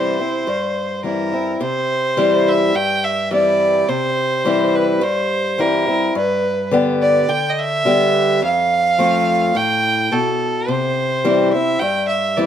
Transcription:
0.00 0.42 C3 medium
0.00 0.18 E3 medium
0.00 0.18 G3 medium
0.00 0.19 C4 medium
0.00 0.18 E4 medium
0.00 1.05 C5 medium
0.19 0.47 C4 soft
0.19 0.46 E4 soft
0.47 1.56 G2 medium
1.04 1.31 E3 soft
1.04 1.32 G3 soft
1.04 1.32 C4 soft
1.04 1.31 E4 medium
1.04 1.58 A#4 medium
1.32 1.61 C4 soft
1.32 1.60 E4 soft
1.61 2.69 C3 medium
1.61 2.50 C5 loud
2.17 2.72 E3 medium
2.17 2.72 G3 medium
2.17 2.72 C4 medium
2.17 2.72 E4 medium
2.48 2.77 E5 medium
2.74 3.83 G2 medium
2.74 3.06 G5 loud
3.04 3.32 E5 loud
3.31 3.85 E3 medium
3.31 3.86 G3 medium
3.31 3.86 C4 medium
3.31 3.86 E4 medium
3.31 3.91 D5 loud
3.89 4.96 C3 medium
3.89 4.77 C5 loud
4.45 4.99 E3 medium
4.45 4.99 G3 medium
4.45 5.00 C4 medium
4.45 5.00 E4 loud
4.76 5.05 B4 medium
5.01 6.09 G2 medium
5.01 5.62 C5 medium
5.58 5.86 E3 medium
5.58 5.86 G3 medium
5.58 5.86 C4 medium
5.58 5.85 E4 medium
5.58 6.16 A#4 medium
5.87 6.15 C4 medium
5.87 6.14 E4 medium
6.15 7.23 G2 medium
6.15 6.69 B4 medium
6.71 7.26 D3 medium
6.71 7.26 G3 medium
6.71 7.26 B3 medium
6.71 7.27 G4 loud
7.03 7.31 D5 loud
7.29 7.84 D3 medium
7.29 7.52 G5 loud
7.50 7.61 D#5 medium
7.59 8.43 E5 loud
7.85 8.39 D3 medium
7.85 8.39 G3 medium
7.85 8.39 B3 medium
7.85 8.40 G4 medium
8.42 9.49 F2 medium
8.42 9.58 F5 loud
8.98 9.52 F3 medium
8.98 9.52 A3 loud
8.98 9.53 C4 medium
8.98 9.53 F4 loud
9.55 10.09 A2 medium
9.55 10.14 G5 loud
10.12 10.65 B2 medium
10.12 10.71 A4 medium
10.68 11.76 C3 medium
10.68 11.52 C5 loud
11.24 11.52 E3 medium
11.24 11.52 G3 medium
11.24 11.52 C4 medium
11.24 11.52 E4 medium
11.53 11.81 C4 soft
11.53 11.80 E4 medium
11.53 11.81 E5 medium
11.80 12.46 G2 medium
11.80 12.08 G5 loud
12.08 12.39 E5 medium
12.37 12.46 E3 medium
12.37 12.46 G3 medium
12.37 12.46 C4 medium
12.37 12.46 E4 medium
12.37 12.46 D5 medium

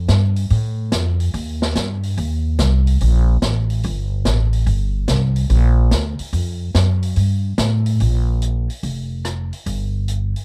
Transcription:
0.08 0.49 G2 medium
0.08 snare medium
0.08 closed hi-hat medium
0.36 open hi-hat soft
0.50 0.91 A2 medium
0.50 open hi-hat soft
0.92 1.32 F2 loud
0.92 snare medium
0.92 closed hi-hat medium
1.20 open hi-hat soft
1.34 1.74 D#2 medium
1.34 open hi-hat medium
1.62 snare medium
1.75 2.16 G2 medium
1.75 snare medium
1.75 closed hi-hat medium
2.03 open hi-hat soft
2.17 2.58 D#2 medium
2.17 open hi-hat soft
2.59 2.99 C2 medium
2.59 snare medium
2.59 closed hi-hat medium
2.87 open hi-hat soft
3.00 3.41 A#1 medium
3.00 open hi-hat medium
3.42 3.82 A1 medium
3.42 snare medium
3.42 closed hi-hat medium
3.70 open hi-hat soft
3.83 4.24 G1 medium
3.83 open hi-hat soft
4.25 4.66 A1 medium
4.25 snare medium
4.25 closed hi-hat medium
4.53 open hi-hat soft
4.66 5.07 G1 medium
4.66 open hi-hat soft
5.08 5.49 C2 medium
5.08 snare medium
5.08 closed hi-hat medium
5.36 open hi-hat soft
5.50 5.90 A#1 medium
5.50 open hi-hat soft
5.91 6.17 D2 medium
5.91 snare medium
5.91 closed hi-hat medium
6.19 muted upright bass stroke soft
6.19 open hi-hat soft
6.33 6.73 F2 medium
6.33 open hi-hat soft
6.74 7.15 F#2 medium
6.74 snare medium
6.74 closed hi-hat medium
7.03 open hi-hat soft
7.16 7.57 G2 medium
7.16 open hi-hat soft
7.58 7.98 A2 loud
7.58 snare medium
7.58 closed hi-hat medium
7.86 open hi-hat soft
8.00 8.67 A#1 medium
8.00 open hi-hat soft
8.42 closed hi-hat soft
8.70 open hi-hat soft
8.83 9.50 F1 medium
8.83 open hi-hat soft
9.25 cross-stick medium
9.25 closed hi-hat soft
9.53 open hi-hat soft
9.66 10.33 G1 medium
9.66 open hi-hat soft
10.08 closed hi-hat soft
10.36 open hi-hat soft

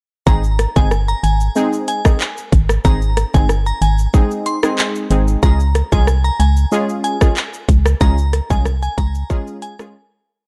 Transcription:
0.26 0.67 G#1 loud
0.26 0.42 G#3 loud
0.26 0.43 C4 medium
0.26 0.43 D#4 medium
0.26 0.43 G#4 loud
0.26 0.48 A#5 medium
0.26 kick loud
0.26 shaker medium
0.44 shaker medium
0.59 cross-stick medium
0.59 closed hi-hat medium
0.59 shaker medium
0.76 1.14 G1 medium
0.76 0.90 G#3 medium
0.76 0.90 C4 medium
0.76 0.90 D#4 medium
0.76 0.90 G#4 medium
0.76 0.86 G#5 medium
0.76 kick loud
0.76 shaker medium
0.91 cross-stick medium
0.91 shaker medium
1.08 1.18 A#5 medium
1.08 shaker soft
1.23 1.49 G#1 medium
1.23 1.35 G#5 medium
1.23 closed hi-hat medium
1.23 shaker medium
1.40 shaker medium
1.55 2.01 G#3 medium
1.55 2.01 C4 medium
1.55 2.01 D#4 medium
1.55 2.01 G#4 loud
1.55 shaker medium
1.73 shaker medium
1.88 1.99 G#5 medium
1.88 closed hi-hat medium
1.88 shaker soft
2.05 2.19 G#3 medium
2.05 2.19 C4 medium
2.05 2.19 D#4 medium
2.05 2.19 G#4 medium
2.05 kick medium
2.05 cross-stick loud
2.05 shaker medium
2.20 clap loud
2.20 shaker medium
2.37 shaker medium
2.52 2.78 G#1 medium
2.52 kick medium
2.52 closed hi-hat medium
2.52 shaker soft
2.69 cross-stick loud
2.69 shaker medium
2.85 3.25 G#1 loud
2.85 3.01 G#3 medium
2.85 3.01 C4 medium
2.85 3.01 D#4 medium
2.85 3.01 G#4 loud
2.85 3.06 A#5 loud
2.85 kick loud
2.85 shaker medium
3.02 shaker medium
3.17 cross-stick medium
3.17 closed hi-hat medium
3.17 shaker medium
3.34 3.72 G1 medium
3.34 3.48 G#3 medium
3.34 3.48 C4 medium
3.34 3.48 D#4 medium
3.34 3.48 G#4 medium
3.34 3.44 G#5 medium
3.34 kick medium
3.34 shaker medium
3.49 cross-stick medium
3.49 shaker medium
3.66 3.76 A#5 medium
3.66 shaker soft
3.82 4.08 G#1 loud
3.82 3.93 G#5 medium
3.82 closed hi-hat medium
3.82 shaker medium
3.98 shaker medium
4.14 4.59 G#3 loud
4.14 4.59 C4 medium
4.14 4.59 D#4 medium
4.14 4.59 G#4 loud
4.14 kick medium
4.14 shaker medium
4.31 shaker medium
4.46 4.57 C6 medium
4.46 closed hi-hat medium
4.46 shaker medium
4.63 5.07 G#3 medium
4.63 5.07 C4 medium
4.63 5.07 D#4 medium
4.63 5.07 G#4 medium
4.63 cross-stick loud
4.63 shaker medium
4.78 clap loud
4.78 shaker medium
4.95 shaker medium
5.10 5.37 G#1 loud
5.10 5.40 G#3 medium
5.10 5.40 C4 medium
5.10 5.40 D#4 medium
5.10 5.41 G#4 medium
5.10 closed hi-hat medium
5.10 shaker medium
5.28 shaker medium
5.43 5.83 C#2 loud
5.43 5.59 G#3 medium
5.43 5.59 C#4 medium
5.43 5.59 F4 medium
5.43 5.59 G#4 loud
5.43 5.64 A#5 loud
5.43 kick loud
5.43 shaker medium
5.60 shaker medium
5.75 cross-stick medium
5.75 closed hi-hat medium
5.75 shaker medium
5.92 6.31 C2 loud
5.92 6.06 G#3 medium
5.92 6.06 C#4 medium
5.92 6.06 F4 medium
5.92 6.06 G#4 medium
5.92 6.02 G#5 medium
5.92 kick medium
5.92 shaker medium
6.07 cross-stick medium
6.07 shaker medium
6.24 6.34 A#5 medium
6.24 shaker soft
6.40 6.66 C#2 loud
6.40 6.51 G#5 medium
6.40 closed hi-hat medium
6.40 shaker soft
6.57 shaker medium
6.72 7.17 G#3 medium
6.72 7.17 C#4 medium
6.72 7.17 F4 medium
6.72 7.17 G#4 loud
6.72 shaker medium
6.89 shaker medium
7.04 7.15 G#5 medium
7.04 closed hi-hat medium
7.04 shaker soft
7.21 7.35 G#3 medium
7.21 7.35 C#4 medium
7.21 7.35 F4 medium
7.21 7.36 G#4 medium
7.21 kick loud
7.21 cross-stick loud
7.21 shaker medium
7.36 clap loud
7.36 shaker medium
7.54 shaker medium
7.69 7.95 C#2 medium
7.69 kick medium
7.69 closed hi-hat medium
7.69 shaker medium
7.86 cross-stick loud
7.86 shaker medium
8.01 8.41 C#2 loud
8.01 8.17 G#3 loud
8.01 8.17 C#4 medium
8.01 8.17 F4 medium
8.01 8.17 G#4 loud
8.01 8.22 A#5 loud
8.01 kick loud
8.01 shaker medium
8.18 shaker medium
8.33 cross-stick medium
8.33 closed hi-hat medium
8.33 shaker medium
8.50 8.89 C2 medium
8.50 8.64 G#3 medium
8.50 8.64 C#4 medium
8.50 8.64 F4 medium
8.50 8.65 G#4 medium
8.50 8.60 G#5 medium
8.50 kick medium
8.50 shaker medium
8.65 cross-stick medium
8.65 shaker medium
8.82 8.93 G#5 medium
8.82 shaker soft
8.98 9.24 C#2 loud
8.98 9.09 A#5 medium
8.98 kick medium
8.98 closed hi-hat medium
8.98 shaker medium
9.15 shaker medium
9.30 9.75 G#3 medium
9.30 9.75 C#4 medium
9.30 9.75 F4 medium
9.30 9.75 G#4 loud
9.30 kick medium
9.30 shaker medium
9.47 shaker medium
9.62 9.73 G#5 medium
9.62 closed hi-hat medium
9.62 shaker medium
9.79 9.94 G#3 medium
9.79 9.94 C#4 medium
9.79 9.95 F4 medium
9.79 9.95 G#4 medium
9.79 cross-stick loud
9.79 shaker medium

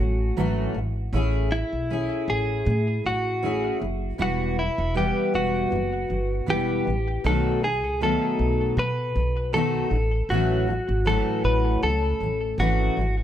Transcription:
0.00 0.30 A1 medium
0.00 0.30 A2 soft
0.00 0.30 E3 soft
0.00 0.31 F#3 soft
0.00 0.37 A3 medium
0.00 0.37 C#4 medium
0.00 0.72 F#4 medium
0.37 0.68 G#1 medium
0.37 0.74 E3 medium
0.37 0.75 F#3 medium
0.37 0.75 A3 medium
0.37 0.76 C#4 medium
0.37 0.76 F#4 medium
0.75 1.06 G#1 medium
0.75 1.07 E3 soft
0.75 1.07 F#3 soft
1.13 1.62 A1 medium
1.13 1.50 A3 medium
1.13 1.52 C#4 medium
1.13 1.52 E4 medium
1.13 1.52 G#4 medium
1.51 1.83 A3 soft
1.51 2.31 E4 medium
1.73 2.04 B1 medium
1.90 2.64 A3 medium
1.90 2.66 C#4 medium
1.90 3.43 E4 medium
1.90 2.67 G#4 medium
2.28 2.59 A1 medium
2.28 3.06 G#4 medium
2.65 2.98 A2 medium
2.65 2.97 A3 soft
2.65 2.98 C#4 medium
3.04 3.68 A1 medium
3.04 3.36 A3 soft
3.04 3.37 C#4 medium
3.04 3.78 F#4 medium
3.42 3.79 A3 medium
3.42 3.81 C#4 medium
3.42 3.81 E4 medium
3.42 3.82 G#4 medium
3.80 4.13 F#1 medium
3.80 4.12 A3 soft
3.80 4.13 C#4 soft
4.18 4.68 E1 medium
4.18 4.55 E3 medium
4.18 4.57 G3 medium
4.18 4.57 B3 medium
4.18 4.57 E4 medium
4.18 4.58 F#4 medium
4.18 4.56 F#4 medium
4.56 4.88 E3 soft
4.56 4.89 G3 soft
4.56 4.97 E4 medium
4.78 5.10 E1 medium
4.94 5.69 E3 medium
4.94 5.71 G3 medium
4.94 6.47 B3 medium
4.94 5.72 E4 medium
4.94 5.35 G4 medium
5.34 5.65 E1 medium
5.34 6.50 F#4 medium
5.71 6.03 F#1 medium
5.71 6.03 E3 medium
5.71 6.04 G3 medium
6.08 6.41 G1 medium
6.08 6.41 E3 soft
6.08 6.42 G3 soft
6.46 6.80 E1 medium
6.46 6.84 E3 medium
6.46 6.86 G3 medium
6.46 6.86 B3 medium
6.46 6.86 E4 medium
6.46 7.26 G4 medium
6.85 7.18 A1 medium
6.85 7.17 E3 soft
6.85 7.18 G3 soft
7.24 7.84 B1 medium
7.24 7.60 B2 medium
7.24 7.62 D#3 medium
7.24 7.62 F#3 medium
7.24 7.63 A3 medium
7.24 7.63 D#4 medium
7.24 7.63 F#4 medium
7.24 7.64 A4 medium
7.62 7.94 B2 soft
7.62 7.94 D#3 soft
7.62 7.95 F#3 soft
7.62 8.03 G#4 medium
7.84 8.15 C#2 medium
8.01 8.75 B2 medium
8.01 8.76 D#3 medium
8.01 8.78 F#3 medium
8.01 8.80 A3 medium
8.01 8.78 D#4 medium
8.01 9.54 F#4 medium
8.01 8.75 A4 medium
8.39 8.71 B1 medium
8.77 9.09 B2 soft
8.77 9.09 B2 medium
8.77 9.09 D#3 medium
8.77 9.09 F#3 medium
8.77 9.54 B4 medium
9.15 9.78 B1 medium
9.15 9.47 B2 soft
9.15 9.48 D#3 soft
9.15 9.48 F#3 soft
9.53 9.90 B2 medium
9.53 9.92 D#3 medium
9.53 9.92 F#3 medium
9.53 9.92 A3 medium
9.53 9.92 D#4 medium
9.53 9.92 F#4 medium
9.53 10.33 A4 medium
9.91 10.23 A1 medium
9.91 10.23 A2 soft
9.91 10.23 E3 soft
9.91 10.24 F#3 soft
10.29 10.78 A1 medium
10.29 10.66 A2 medium
10.29 10.68 E3 medium
10.29 10.69 F#3 medium
10.29 10.69 A3 medium
10.29 10.69 C#4 medium
10.29 11.09 F#4 medium
10.29 10.69 F#4 medium
10.68 10.99 A2 soft
10.68 11.00 E3 soft
10.68 11.01 F#3 soft
10.89 11.20 G#1 medium
11.05 11.82 A2 medium
11.05 11.84 E3 medium
11.05 11.83 F#3 medium
11.05 12.59 A3 medium
11.05 12.60 C#4 medium
11.05 11.83 F#4 medium
11.05 11.45 A4 medium
11.44 11.76 A1 medium
11.44 11.83 B4 medium
11.83 12.14 C#2 loud
11.83 12.15 A2 soft
11.83 12.15 E3 soft
11.83 12.15 F#3 medium
11.83 12.59 A4 medium
12.20 12.52 A1 medium
12.20 12.52 A2 soft
12.20 12.53 E3 soft
12.20 12.54 F#3 soft
12.58 12.90 G#1 medium
12.58 12.97 E3 medium
12.58 12.98 F#3 medium
12.58 12.98 A3 medium
12.58 12.98 C#4 medium
12.58 13.15 F#4 medium
12.58 12.98 F#4 medium
12.97 13.23 G#1 medium
12.97 13.23 E3 soft
12.97 13.23 F#3 soft

